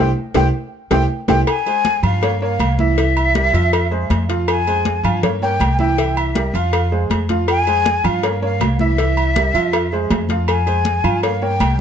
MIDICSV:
0, 0, Header, 1, 5, 480
1, 0, Start_track
1, 0, Key_signature, -4, "minor"
1, 0, Tempo, 375235
1, 1887, Time_signature, 4, 2, 24, 8
1, 15102, End_track
2, 0, Start_track
2, 0, Title_t, "Flute"
2, 0, Program_c, 0, 73
2, 460, Note_on_c, 0, 79, 114
2, 608, Note_off_c, 0, 79, 0
2, 1171, Note_on_c, 0, 79, 106
2, 1323, Note_off_c, 0, 79, 0
2, 1649, Note_on_c, 0, 79, 108
2, 1802, Note_off_c, 0, 79, 0
2, 1904, Note_on_c, 0, 80, 111
2, 2566, Note_off_c, 0, 80, 0
2, 2620, Note_on_c, 0, 77, 107
2, 3061, Note_off_c, 0, 77, 0
2, 3102, Note_on_c, 0, 77, 105
2, 3579, Note_on_c, 0, 76, 114
2, 3598, Note_off_c, 0, 77, 0
2, 5495, Note_off_c, 0, 76, 0
2, 5744, Note_on_c, 0, 80, 106
2, 6646, Note_off_c, 0, 80, 0
2, 6701, Note_on_c, 0, 77, 92
2, 6778, Note_off_c, 0, 77, 0
2, 6937, Note_on_c, 0, 79, 109
2, 7380, Note_off_c, 0, 79, 0
2, 7422, Note_on_c, 0, 79, 106
2, 7902, Note_on_c, 0, 76, 86
2, 7921, Note_off_c, 0, 79, 0
2, 8377, Note_on_c, 0, 77, 88
2, 8396, Note_off_c, 0, 76, 0
2, 8988, Note_off_c, 0, 77, 0
2, 9588, Note_on_c, 0, 80, 114
2, 10303, Note_on_c, 0, 77, 103
2, 10322, Note_off_c, 0, 80, 0
2, 10776, Note_off_c, 0, 77, 0
2, 10786, Note_on_c, 0, 77, 106
2, 11224, Note_off_c, 0, 77, 0
2, 11268, Note_on_c, 0, 76, 117
2, 13125, Note_off_c, 0, 76, 0
2, 13417, Note_on_c, 0, 80, 103
2, 14319, Note_off_c, 0, 80, 0
2, 14376, Note_on_c, 0, 77, 97
2, 14609, Note_on_c, 0, 79, 109
2, 14628, Note_off_c, 0, 77, 0
2, 15078, Note_off_c, 0, 79, 0
2, 15102, End_track
3, 0, Start_track
3, 0, Title_t, "Upright piano"
3, 0, Program_c, 1, 0
3, 448, Note_on_c, 1, 64, 99
3, 449, Note_on_c, 1, 72, 95
3, 451, Note_on_c, 1, 67, 99
3, 601, Note_off_c, 1, 64, 0
3, 601, Note_off_c, 1, 72, 0
3, 603, Note_off_c, 1, 67, 0
3, 1163, Note_on_c, 1, 72, 95
3, 1164, Note_on_c, 1, 67, 105
3, 1167, Note_on_c, 1, 64, 103
3, 1318, Note_off_c, 1, 67, 0
3, 1318, Note_off_c, 1, 72, 0
3, 1320, Note_off_c, 1, 64, 0
3, 1646, Note_on_c, 1, 72, 93
3, 1648, Note_on_c, 1, 64, 99
3, 1648, Note_on_c, 1, 67, 96
3, 1800, Note_off_c, 1, 72, 0
3, 1801, Note_off_c, 1, 64, 0
3, 1801, Note_off_c, 1, 67, 0
3, 2130, Note_on_c, 1, 56, 78
3, 2137, Note_on_c, 1, 68, 76
3, 2143, Note_on_c, 1, 72, 84
3, 2522, Note_off_c, 1, 56, 0
3, 2527, Note_off_c, 1, 68, 0
3, 2530, Note_off_c, 1, 72, 0
3, 2611, Note_on_c, 1, 53, 89
3, 2615, Note_on_c, 1, 65, 85
3, 2622, Note_on_c, 1, 77, 88
3, 2806, Note_off_c, 1, 53, 0
3, 2809, Note_off_c, 1, 65, 0
3, 2813, Note_off_c, 1, 77, 0
3, 2853, Note_on_c, 1, 58, 84
3, 2856, Note_on_c, 1, 70, 83
3, 2860, Note_on_c, 1, 73, 88
3, 3048, Note_off_c, 1, 58, 0
3, 3049, Note_off_c, 1, 70, 0
3, 3052, Note_off_c, 1, 73, 0
3, 3095, Note_on_c, 1, 58, 81
3, 3097, Note_on_c, 1, 70, 84
3, 3099, Note_on_c, 1, 73, 81
3, 3486, Note_off_c, 1, 58, 0
3, 3487, Note_off_c, 1, 70, 0
3, 3488, Note_off_c, 1, 73, 0
3, 3577, Note_on_c, 1, 64, 90
3, 3578, Note_on_c, 1, 52, 84
3, 3582, Note_on_c, 1, 76, 79
3, 3770, Note_off_c, 1, 64, 0
3, 3771, Note_off_c, 1, 52, 0
3, 3773, Note_off_c, 1, 76, 0
3, 3808, Note_on_c, 1, 52, 73
3, 3813, Note_on_c, 1, 64, 81
3, 3817, Note_on_c, 1, 76, 76
3, 4202, Note_off_c, 1, 52, 0
3, 4205, Note_off_c, 1, 64, 0
3, 4207, Note_off_c, 1, 76, 0
3, 4288, Note_on_c, 1, 55, 74
3, 4290, Note_on_c, 1, 67, 76
3, 4297, Note_on_c, 1, 70, 67
3, 4485, Note_off_c, 1, 55, 0
3, 4486, Note_off_c, 1, 67, 0
3, 4490, Note_off_c, 1, 70, 0
3, 4524, Note_on_c, 1, 53, 94
3, 4525, Note_on_c, 1, 65, 91
3, 4531, Note_on_c, 1, 76, 100
3, 4919, Note_off_c, 1, 53, 0
3, 4920, Note_off_c, 1, 65, 0
3, 4924, Note_off_c, 1, 76, 0
3, 5002, Note_on_c, 1, 56, 80
3, 5006, Note_on_c, 1, 68, 80
3, 5012, Note_on_c, 1, 72, 89
3, 5399, Note_off_c, 1, 56, 0
3, 5401, Note_off_c, 1, 68, 0
3, 5404, Note_off_c, 1, 72, 0
3, 5487, Note_on_c, 1, 53, 82
3, 5491, Note_on_c, 1, 65, 87
3, 5497, Note_on_c, 1, 77, 84
3, 5882, Note_off_c, 1, 53, 0
3, 5884, Note_off_c, 1, 65, 0
3, 5888, Note_off_c, 1, 77, 0
3, 5980, Note_on_c, 1, 68, 78
3, 5981, Note_on_c, 1, 56, 80
3, 5985, Note_on_c, 1, 72, 79
3, 6369, Note_off_c, 1, 68, 0
3, 6370, Note_off_c, 1, 56, 0
3, 6373, Note_off_c, 1, 72, 0
3, 6450, Note_on_c, 1, 53, 100
3, 6458, Note_on_c, 1, 65, 89
3, 6458, Note_on_c, 1, 77, 91
3, 6647, Note_off_c, 1, 53, 0
3, 6651, Note_off_c, 1, 77, 0
3, 6652, Note_off_c, 1, 65, 0
3, 6689, Note_on_c, 1, 58, 84
3, 6695, Note_on_c, 1, 70, 80
3, 6699, Note_on_c, 1, 73, 86
3, 6886, Note_off_c, 1, 58, 0
3, 6890, Note_off_c, 1, 70, 0
3, 6892, Note_off_c, 1, 73, 0
3, 6936, Note_on_c, 1, 58, 78
3, 6940, Note_on_c, 1, 70, 87
3, 6942, Note_on_c, 1, 73, 82
3, 7327, Note_off_c, 1, 58, 0
3, 7329, Note_off_c, 1, 70, 0
3, 7331, Note_off_c, 1, 73, 0
3, 7412, Note_on_c, 1, 52, 82
3, 7415, Note_on_c, 1, 64, 89
3, 7423, Note_on_c, 1, 76, 80
3, 7608, Note_off_c, 1, 52, 0
3, 7610, Note_off_c, 1, 64, 0
3, 7615, Note_off_c, 1, 76, 0
3, 7651, Note_on_c, 1, 52, 85
3, 7652, Note_on_c, 1, 64, 84
3, 7661, Note_on_c, 1, 76, 83
3, 8044, Note_off_c, 1, 52, 0
3, 8044, Note_off_c, 1, 64, 0
3, 8050, Note_off_c, 1, 76, 0
3, 8130, Note_on_c, 1, 55, 66
3, 8137, Note_on_c, 1, 67, 71
3, 8143, Note_on_c, 1, 70, 76
3, 8327, Note_off_c, 1, 55, 0
3, 8331, Note_off_c, 1, 67, 0
3, 8334, Note_off_c, 1, 70, 0
3, 8375, Note_on_c, 1, 53, 82
3, 8379, Note_on_c, 1, 65, 91
3, 8384, Note_on_c, 1, 77, 95
3, 8766, Note_off_c, 1, 53, 0
3, 8769, Note_off_c, 1, 65, 0
3, 8771, Note_off_c, 1, 77, 0
3, 8851, Note_on_c, 1, 68, 72
3, 8852, Note_on_c, 1, 56, 86
3, 8855, Note_on_c, 1, 72, 72
3, 9244, Note_off_c, 1, 56, 0
3, 9244, Note_off_c, 1, 68, 0
3, 9246, Note_off_c, 1, 72, 0
3, 9331, Note_on_c, 1, 53, 78
3, 9339, Note_on_c, 1, 65, 82
3, 9339, Note_on_c, 1, 77, 85
3, 9724, Note_off_c, 1, 53, 0
3, 9728, Note_off_c, 1, 65, 0
3, 9729, Note_off_c, 1, 77, 0
3, 9812, Note_on_c, 1, 56, 87
3, 9815, Note_on_c, 1, 68, 80
3, 9818, Note_on_c, 1, 72, 81
3, 10204, Note_off_c, 1, 56, 0
3, 10206, Note_off_c, 1, 68, 0
3, 10208, Note_off_c, 1, 72, 0
3, 10286, Note_on_c, 1, 53, 89
3, 10292, Note_on_c, 1, 77, 92
3, 10293, Note_on_c, 1, 65, 85
3, 10484, Note_off_c, 1, 53, 0
3, 10488, Note_off_c, 1, 65, 0
3, 10488, Note_off_c, 1, 77, 0
3, 10529, Note_on_c, 1, 58, 77
3, 10533, Note_on_c, 1, 70, 85
3, 10538, Note_on_c, 1, 73, 85
3, 10726, Note_off_c, 1, 58, 0
3, 10728, Note_off_c, 1, 70, 0
3, 10731, Note_off_c, 1, 73, 0
3, 10773, Note_on_c, 1, 58, 83
3, 10777, Note_on_c, 1, 70, 76
3, 10779, Note_on_c, 1, 73, 87
3, 11164, Note_off_c, 1, 58, 0
3, 11167, Note_off_c, 1, 70, 0
3, 11168, Note_off_c, 1, 73, 0
3, 11258, Note_on_c, 1, 52, 82
3, 11260, Note_on_c, 1, 64, 85
3, 11267, Note_on_c, 1, 76, 94
3, 11451, Note_off_c, 1, 52, 0
3, 11452, Note_off_c, 1, 64, 0
3, 11456, Note_off_c, 1, 76, 0
3, 11488, Note_on_c, 1, 52, 83
3, 11492, Note_on_c, 1, 64, 85
3, 11499, Note_on_c, 1, 76, 82
3, 11881, Note_off_c, 1, 52, 0
3, 11884, Note_off_c, 1, 64, 0
3, 11888, Note_off_c, 1, 76, 0
3, 11973, Note_on_c, 1, 55, 70
3, 11978, Note_on_c, 1, 67, 72
3, 11979, Note_on_c, 1, 70, 71
3, 12167, Note_off_c, 1, 55, 0
3, 12170, Note_off_c, 1, 67, 0
3, 12171, Note_off_c, 1, 70, 0
3, 12212, Note_on_c, 1, 53, 91
3, 12215, Note_on_c, 1, 65, 90
3, 12215, Note_on_c, 1, 76, 90
3, 12603, Note_off_c, 1, 53, 0
3, 12605, Note_off_c, 1, 65, 0
3, 12605, Note_off_c, 1, 76, 0
3, 12697, Note_on_c, 1, 56, 82
3, 12700, Note_on_c, 1, 68, 82
3, 12706, Note_on_c, 1, 72, 89
3, 13086, Note_off_c, 1, 56, 0
3, 13088, Note_off_c, 1, 68, 0
3, 13091, Note_off_c, 1, 72, 0
3, 13175, Note_on_c, 1, 53, 89
3, 13180, Note_on_c, 1, 65, 88
3, 13180, Note_on_c, 1, 77, 84
3, 13564, Note_off_c, 1, 53, 0
3, 13567, Note_off_c, 1, 65, 0
3, 13568, Note_off_c, 1, 77, 0
3, 13640, Note_on_c, 1, 56, 73
3, 13646, Note_on_c, 1, 68, 85
3, 13653, Note_on_c, 1, 72, 87
3, 14035, Note_off_c, 1, 56, 0
3, 14039, Note_off_c, 1, 68, 0
3, 14043, Note_off_c, 1, 72, 0
3, 14119, Note_on_c, 1, 53, 88
3, 14122, Note_on_c, 1, 65, 96
3, 14126, Note_on_c, 1, 77, 89
3, 14318, Note_off_c, 1, 53, 0
3, 14320, Note_off_c, 1, 65, 0
3, 14322, Note_off_c, 1, 77, 0
3, 14364, Note_on_c, 1, 58, 82
3, 14367, Note_on_c, 1, 70, 87
3, 14369, Note_on_c, 1, 73, 84
3, 14561, Note_off_c, 1, 58, 0
3, 14563, Note_off_c, 1, 70, 0
3, 14564, Note_off_c, 1, 73, 0
3, 14608, Note_on_c, 1, 70, 74
3, 14610, Note_on_c, 1, 58, 83
3, 14613, Note_on_c, 1, 73, 85
3, 15000, Note_off_c, 1, 58, 0
3, 15000, Note_off_c, 1, 70, 0
3, 15002, Note_off_c, 1, 73, 0
3, 15102, End_track
4, 0, Start_track
4, 0, Title_t, "Upright bass"
4, 0, Program_c, 2, 32
4, 0, Note_on_c, 2, 36, 100
4, 141, Note_off_c, 2, 36, 0
4, 443, Note_on_c, 2, 36, 109
4, 623, Note_off_c, 2, 36, 0
4, 1159, Note_on_c, 2, 36, 97
4, 1341, Note_off_c, 2, 36, 0
4, 1637, Note_on_c, 2, 36, 103
4, 1820, Note_off_c, 2, 36, 0
4, 2593, Note_on_c, 2, 43, 96
4, 3270, Note_off_c, 2, 43, 0
4, 3320, Note_on_c, 2, 36, 88
4, 4449, Note_off_c, 2, 36, 0
4, 4517, Note_on_c, 2, 41, 94
4, 5192, Note_off_c, 2, 41, 0
4, 5244, Note_on_c, 2, 41, 97
4, 6372, Note_off_c, 2, 41, 0
4, 6440, Note_on_c, 2, 43, 96
4, 7114, Note_off_c, 2, 43, 0
4, 7159, Note_on_c, 2, 36, 93
4, 8289, Note_off_c, 2, 36, 0
4, 8361, Note_on_c, 2, 41, 101
4, 9034, Note_off_c, 2, 41, 0
4, 9079, Note_on_c, 2, 41, 86
4, 10209, Note_off_c, 2, 41, 0
4, 10282, Note_on_c, 2, 43, 92
4, 10954, Note_off_c, 2, 43, 0
4, 11000, Note_on_c, 2, 36, 96
4, 12128, Note_off_c, 2, 36, 0
4, 12202, Note_on_c, 2, 41, 89
4, 12873, Note_off_c, 2, 41, 0
4, 12926, Note_on_c, 2, 41, 101
4, 14049, Note_off_c, 2, 41, 0
4, 14121, Note_on_c, 2, 43, 93
4, 14791, Note_off_c, 2, 43, 0
4, 14839, Note_on_c, 2, 36, 88
4, 15102, Note_off_c, 2, 36, 0
4, 15102, End_track
5, 0, Start_track
5, 0, Title_t, "Drums"
5, 440, Note_on_c, 9, 63, 87
5, 441, Note_on_c, 9, 56, 107
5, 446, Note_on_c, 9, 65, 104
5, 568, Note_off_c, 9, 63, 0
5, 569, Note_off_c, 9, 56, 0
5, 574, Note_off_c, 9, 65, 0
5, 1162, Note_on_c, 9, 56, 108
5, 1167, Note_on_c, 9, 65, 109
5, 1168, Note_on_c, 9, 63, 96
5, 1290, Note_off_c, 9, 56, 0
5, 1295, Note_off_c, 9, 63, 0
5, 1295, Note_off_c, 9, 65, 0
5, 1641, Note_on_c, 9, 65, 99
5, 1643, Note_on_c, 9, 63, 102
5, 1645, Note_on_c, 9, 56, 107
5, 1769, Note_off_c, 9, 65, 0
5, 1771, Note_off_c, 9, 63, 0
5, 1773, Note_off_c, 9, 56, 0
5, 1883, Note_on_c, 9, 56, 107
5, 1884, Note_on_c, 9, 63, 41
5, 1885, Note_on_c, 9, 68, 112
5, 2011, Note_off_c, 9, 56, 0
5, 2012, Note_off_c, 9, 63, 0
5, 2013, Note_off_c, 9, 68, 0
5, 2126, Note_on_c, 9, 63, 37
5, 2129, Note_on_c, 9, 68, 75
5, 2254, Note_off_c, 9, 63, 0
5, 2257, Note_off_c, 9, 68, 0
5, 2364, Note_on_c, 9, 63, 87
5, 2367, Note_on_c, 9, 56, 70
5, 2491, Note_off_c, 9, 63, 0
5, 2495, Note_off_c, 9, 56, 0
5, 2600, Note_on_c, 9, 63, 35
5, 2600, Note_on_c, 9, 64, 84
5, 2603, Note_on_c, 9, 68, 115
5, 2728, Note_off_c, 9, 63, 0
5, 2728, Note_off_c, 9, 64, 0
5, 2731, Note_off_c, 9, 68, 0
5, 2839, Note_on_c, 9, 63, 38
5, 2847, Note_on_c, 9, 68, 90
5, 2848, Note_on_c, 9, 56, 119
5, 2967, Note_off_c, 9, 63, 0
5, 2975, Note_off_c, 9, 68, 0
5, 2976, Note_off_c, 9, 56, 0
5, 3077, Note_on_c, 9, 63, 34
5, 3205, Note_off_c, 9, 63, 0
5, 3320, Note_on_c, 9, 63, 85
5, 3328, Note_on_c, 9, 56, 69
5, 3329, Note_on_c, 9, 68, 110
5, 3447, Note_off_c, 9, 63, 0
5, 3455, Note_off_c, 9, 56, 0
5, 3457, Note_off_c, 9, 68, 0
5, 3566, Note_on_c, 9, 63, 88
5, 3694, Note_off_c, 9, 63, 0
5, 3808, Note_on_c, 9, 63, 39
5, 3809, Note_on_c, 9, 56, 111
5, 3810, Note_on_c, 9, 68, 76
5, 3936, Note_off_c, 9, 63, 0
5, 3937, Note_off_c, 9, 56, 0
5, 3938, Note_off_c, 9, 68, 0
5, 4051, Note_on_c, 9, 68, 111
5, 4054, Note_on_c, 9, 63, 37
5, 4179, Note_off_c, 9, 68, 0
5, 4182, Note_off_c, 9, 63, 0
5, 4287, Note_on_c, 9, 63, 86
5, 4292, Note_on_c, 9, 56, 68
5, 4415, Note_off_c, 9, 63, 0
5, 4420, Note_off_c, 9, 56, 0
5, 4535, Note_on_c, 9, 68, 77
5, 4663, Note_off_c, 9, 68, 0
5, 4770, Note_on_c, 9, 63, 34
5, 4773, Note_on_c, 9, 56, 120
5, 4775, Note_on_c, 9, 68, 107
5, 4898, Note_off_c, 9, 63, 0
5, 4900, Note_off_c, 9, 56, 0
5, 4903, Note_off_c, 9, 68, 0
5, 5008, Note_on_c, 9, 63, 34
5, 5136, Note_off_c, 9, 63, 0
5, 5248, Note_on_c, 9, 63, 94
5, 5252, Note_on_c, 9, 68, 87
5, 5255, Note_on_c, 9, 56, 80
5, 5375, Note_off_c, 9, 63, 0
5, 5380, Note_off_c, 9, 68, 0
5, 5383, Note_off_c, 9, 56, 0
5, 5495, Note_on_c, 9, 56, 78
5, 5622, Note_off_c, 9, 56, 0
5, 5730, Note_on_c, 9, 63, 38
5, 5731, Note_on_c, 9, 68, 118
5, 5732, Note_on_c, 9, 56, 109
5, 5858, Note_off_c, 9, 63, 0
5, 5859, Note_off_c, 9, 68, 0
5, 5860, Note_off_c, 9, 56, 0
5, 5968, Note_on_c, 9, 63, 38
5, 5979, Note_on_c, 9, 68, 77
5, 6096, Note_off_c, 9, 63, 0
5, 6107, Note_off_c, 9, 68, 0
5, 6207, Note_on_c, 9, 63, 85
5, 6214, Note_on_c, 9, 56, 72
5, 6335, Note_off_c, 9, 63, 0
5, 6342, Note_off_c, 9, 56, 0
5, 6453, Note_on_c, 9, 63, 36
5, 6453, Note_on_c, 9, 64, 75
5, 6456, Note_on_c, 9, 68, 122
5, 6581, Note_off_c, 9, 63, 0
5, 6581, Note_off_c, 9, 64, 0
5, 6584, Note_off_c, 9, 68, 0
5, 6694, Note_on_c, 9, 56, 115
5, 6694, Note_on_c, 9, 63, 38
5, 6694, Note_on_c, 9, 64, 75
5, 6697, Note_on_c, 9, 68, 85
5, 6822, Note_off_c, 9, 56, 0
5, 6822, Note_off_c, 9, 63, 0
5, 6822, Note_off_c, 9, 64, 0
5, 6825, Note_off_c, 9, 68, 0
5, 6932, Note_on_c, 9, 63, 32
5, 7060, Note_off_c, 9, 63, 0
5, 7168, Note_on_c, 9, 63, 92
5, 7175, Note_on_c, 9, 68, 103
5, 7178, Note_on_c, 9, 56, 70
5, 7296, Note_off_c, 9, 63, 0
5, 7303, Note_off_c, 9, 68, 0
5, 7306, Note_off_c, 9, 56, 0
5, 7403, Note_on_c, 9, 63, 76
5, 7531, Note_off_c, 9, 63, 0
5, 7650, Note_on_c, 9, 63, 42
5, 7653, Note_on_c, 9, 68, 80
5, 7655, Note_on_c, 9, 56, 109
5, 7778, Note_off_c, 9, 63, 0
5, 7781, Note_off_c, 9, 68, 0
5, 7783, Note_off_c, 9, 56, 0
5, 7887, Note_on_c, 9, 63, 35
5, 7894, Note_on_c, 9, 68, 114
5, 8014, Note_off_c, 9, 63, 0
5, 8022, Note_off_c, 9, 68, 0
5, 8128, Note_on_c, 9, 63, 93
5, 8136, Note_on_c, 9, 56, 72
5, 8256, Note_off_c, 9, 63, 0
5, 8264, Note_off_c, 9, 56, 0
5, 8376, Note_on_c, 9, 68, 82
5, 8504, Note_off_c, 9, 68, 0
5, 8609, Note_on_c, 9, 68, 101
5, 8610, Note_on_c, 9, 56, 106
5, 8613, Note_on_c, 9, 63, 33
5, 8737, Note_off_c, 9, 56, 0
5, 8737, Note_off_c, 9, 68, 0
5, 8741, Note_off_c, 9, 63, 0
5, 8857, Note_on_c, 9, 63, 34
5, 8985, Note_off_c, 9, 63, 0
5, 9090, Note_on_c, 9, 63, 88
5, 9092, Note_on_c, 9, 56, 80
5, 9093, Note_on_c, 9, 68, 95
5, 9218, Note_off_c, 9, 63, 0
5, 9220, Note_off_c, 9, 56, 0
5, 9221, Note_off_c, 9, 68, 0
5, 9327, Note_on_c, 9, 56, 70
5, 9334, Note_on_c, 9, 63, 72
5, 9455, Note_off_c, 9, 56, 0
5, 9462, Note_off_c, 9, 63, 0
5, 9568, Note_on_c, 9, 56, 105
5, 9571, Note_on_c, 9, 68, 109
5, 9576, Note_on_c, 9, 63, 40
5, 9696, Note_off_c, 9, 56, 0
5, 9699, Note_off_c, 9, 68, 0
5, 9704, Note_off_c, 9, 63, 0
5, 9811, Note_on_c, 9, 68, 75
5, 9812, Note_on_c, 9, 63, 34
5, 9939, Note_off_c, 9, 68, 0
5, 9940, Note_off_c, 9, 63, 0
5, 10047, Note_on_c, 9, 56, 66
5, 10053, Note_on_c, 9, 63, 95
5, 10175, Note_off_c, 9, 56, 0
5, 10181, Note_off_c, 9, 63, 0
5, 10292, Note_on_c, 9, 68, 111
5, 10299, Note_on_c, 9, 63, 33
5, 10299, Note_on_c, 9, 64, 83
5, 10419, Note_off_c, 9, 68, 0
5, 10427, Note_off_c, 9, 63, 0
5, 10427, Note_off_c, 9, 64, 0
5, 10533, Note_on_c, 9, 56, 113
5, 10534, Note_on_c, 9, 68, 80
5, 10536, Note_on_c, 9, 63, 37
5, 10661, Note_off_c, 9, 56, 0
5, 10662, Note_off_c, 9, 68, 0
5, 10664, Note_off_c, 9, 63, 0
5, 10777, Note_on_c, 9, 63, 36
5, 10905, Note_off_c, 9, 63, 0
5, 11011, Note_on_c, 9, 56, 74
5, 11015, Note_on_c, 9, 66, 79
5, 11015, Note_on_c, 9, 68, 122
5, 11016, Note_on_c, 9, 63, 97
5, 11139, Note_off_c, 9, 56, 0
5, 11143, Note_off_c, 9, 66, 0
5, 11143, Note_off_c, 9, 68, 0
5, 11144, Note_off_c, 9, 63, 0
5, 11249, Note_on_c, 9, 63, 88
5, 11377, Note_off_c, 9, 63, 0
5, 11491, Note_on_c, 9, 56, 98
5, 11494, Note_on_c, 9, 63, 39
5, 11498, Note_on_c, 9, 68, 69
5, 11619, Note_off_c, 9, 56, 0
5, 11622, Note_off_c, 9, 63, 0
5, 11625, Note_off_c, 9, 68, 0
5, 11733, Note_on_c, 9, 68, 105
5, 11735, Note_on_c, 9, 63, 36
5, 11861, Note_off_c, 9, 68, 0
5, 11863, Note_off_c, 9, 63, 0
5, 11971, Note_on_c, 9, 56, 70
5, 11976, Note_on_c, 9, 63, 94
5, 12099, Note_off_c, 9, 56, 0
5, 12104, Note_off_c, 9, 63, 0
5, 12215, Note_on_c, 9, 68, 82
5, 12342, Note_off_c, 9, 68, 0
5, 12449, Note_on_c, 9, 68, 106
5, 12452, Note_on_c, 9, 56, 118
5, 12452, Note_on_c, 9, 63, 39
5, 12577, Note_off_c, 9, 68, 0
5, 12580, Note_off_c, 9, 56, 0
5, 12580, Note_off_c, 9, 63, 0
5, 12693, Note_on_c, 9, 63, 36
5, 12821, Note_off_c, 9, 63, 0
5, 12926, Note_on_c, 9, 63, 91
5, 12927, Note_on_c, 9, 66, 76
5, 12927, Note_on_c, 9, 68, 88
5, 12932, Note_on_c, 9, 56, 75
5, 13054, Note_off_c, 9, 63, 0
5, 13054, Note_off_c, 9, 66, 0
5, 13054, Note_off_c, 9, 68, 0
5, 13060, Note_off_c, 9, 56, 0
5, 13161, Note_on_c, 9, 63, 74
5, 13173, Note_on_c, 9, 56, 75
5, 13289, Note_off_c, 9, 63, 0
5, 13301, Note_off_c, 9, 56, 0
5, 13405, Note_on_c, 9, 63, 42
5, 13406, Note_on_c, 9, 68, 114
5, 13413, Note_on_c, 9, 56, 102
5, 13533, Note_off_c, 9, 63, 0
5, 13534, Note_off_c, 9, 68, 0
5, 13541, Note_off_c, 9, 56, 0
5, 13648, Note_on_c, 9, 63, 37
5, 13649, Note_on_c, 9, 68, 76
5, 13776, Note_off_c, 9, 63, 0
5, 13777, Note_off_c, 9, 68, 0
5, 13880, Note_on_c, 9, 63, 96
5, 13893, Note_on_c, 9, 56, 66
5, 14007, Note_off_c, 9, 63, 0
5, 14021, Note_off_c, 9, 56, 0
5, 14123, Note_on_c, 9, 63, 36
5, 14123, Note_on_c, 9, 64, 82
5, 14129, Note_on_c, 9, 68, 123
5, 14251, Note_off_c, 9, 63, 0
5, 14251, Note_off_c, 9, 64, 0
5, 14257, Note_off_c, 9, 68, 0
5, 14364, Note_on_c, 9, 63, 36
5, 14368, Note_on_c, 9, 68, 84
5, 14372, Note_on_c, 9, 56, 123
5, 14492, Note_off_c, 9, 63, 0
5, 14496, Note_off_c, 9, 68, 0
5, 14499, Note_off_c, 9, 56, 0
5, 14605, Note_on_c, 9, 63, 32
5, 14733, Note_off_c, 9, 63, 0
5, 14841, Note_on_c, 9, 63, 96
5, 14845, Note_on_c, 9, 68, 118
5, 14852, Note_on_c, 9, 56, 80
5, 14969, Note_off_c, 9, 63, 0
5, 14973, Note_off_c, 9, 68, 0
5, 14980, Note_off_c, 9, 56, 0
5, 15102, End_track
0, 0, End_of_file